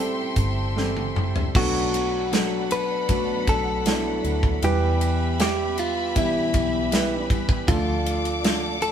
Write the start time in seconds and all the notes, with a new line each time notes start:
Already playing: A1 A2 G3 C4 E4 A4 C5 E5 G5 C6
0.36 G1, kick, closed hi-hat
0.76 E3 G3 C4 E4 A4, snare
0.97 high tom
1.15 G3 C4 E4, mid tom
1.36 floor tom
1.54 B1 B2 F#3 A3 B3 D4 F#4 A4 D5 F#5 B5, kick, crash
1.93 A3 D4 F#4, ride
2.31 F#3 A3 B3 D4 A4, snare, ride
2.71 B4, ride
3.08 B2 F#3 A3 B3 D4 F#4, kick, ride
3.47 B1 A4, kick, ride
3.85 F#3 A3 B3 D4 E4 F#4, snare, ride
4.24 D2 A3 D4 F#4, ride
4.43 kick
4.62 E2 B2 E3 G3 B3 E4 G4 B4 E5 B5, ride
5.01 ride
5.39 G3 B3 G4 E5, snare, ride
5.78 F4, ride
6.15 E2 B2 E3 G3 B3 E4 G4, kick, ride
6.54 B1, kick, ride
6.91 E3 G3 B3 E4 B4, snare, ride
7.30 E3 G3 B3 E4, kick, ride
7.49 kick
7.67 D2 D3 F3 A3 D4 F4 A4 D5 F5 D6, kick, ride
8.06 A3 D4 F4, ride
8.25 ride
8.43 D3 F3 A3 D4 F4 A4, snare, ride
8.82 A4, ride